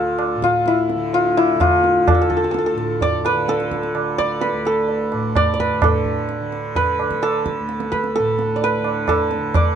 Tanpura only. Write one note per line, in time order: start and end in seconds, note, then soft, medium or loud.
0.00 2.15 D2 medium
0.00 0.35 A2 medium
0.00 0.96 D3 medium
0.35 2.74 A2 medium
0.96 1.56 D3 medium
1.56 3.34 D3 medium
2.15 4.52 D2 medium
2.75 5.13 A2 medium
3.34 3.94 D3 medium
3.94 5.71 D3 medium
4.53 7.60 D2 medium
5.13 5.82 A2 medium
5.71 6.41 D3 medium
5.82 8.19 A2 medium
6.41 7.01 D3 medium
7.01 8.78 D3 medium
7.61 9.75 D2 medium
8.19 9.75 A2 medium
8.78 9.38 D3 medium
9.38 9.75 D3 medium